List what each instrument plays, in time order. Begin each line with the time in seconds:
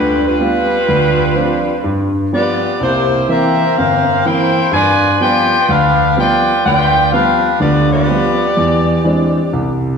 Already playing: grand piano D2 D3, saxophone section G3 D4 F4 B4
0.26 saxophone section G3 D4 F4 B4
0.40 grand piano G3 B3 F4
0.89 grand piano D2
1.35 grand piano F3 C4 D4
1.84 grand piano G2
2.32 grand piano F3 G3 B3, saxophone section B3 F4 G4 D5
2.81 grand piano C2, saxophone section A#3 E4 G4 C5
3.28 grand piano E3 A#3 C4, saxophone section C4 G4 A#4 E5
3.78 grand piano G1, saxophone section C4 G4 A#4 F5
4.26 grand piano E3 A#3 C4, saxophone section E4 A#4 C5 G5
4.72 grand piano G2, saxophone section F4 B4 D5 G#5
5.20 grand piano F3 G3 B3, saxophone section F4 B4 D5 G5
5.69 grand piano D2, saxophone section D4 G4 B4 F5
6.17 grand piano F3 G3 B3, saxophone section F4 B4 D5 G5
6.65 grand piano D2, saxophone section F4 B4 D5 G5
7.12 grand piano F3 G3 B3, saxophone section D4 G4 B4 F5
7.60 grand piano D2 D3, saxophone section B3 F4 G4 D5
7.92 saxophone section B3 F4 G4 D5
8.08 grand piano F3 G3 B3
8.57 grand piano E2
9.04 grand piano E3 G#3 C4 D4
9.53 grand piano C2